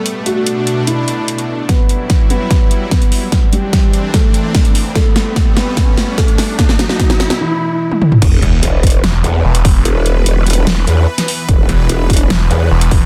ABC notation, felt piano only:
X:1
M:4/4
L:1/8
Q:1/4=147
K:Em
V:1 name="Felt piano"
A F3 E4 | [B,B]3 [B,B]3 [B,B]2- | [B,B] [G,G]3 [A,A]4 | [A,A]3 [B,B]3 [A,A]2- |
[A,A] [F,F]3 [E,E]4 | z8 | z8 | z8 |]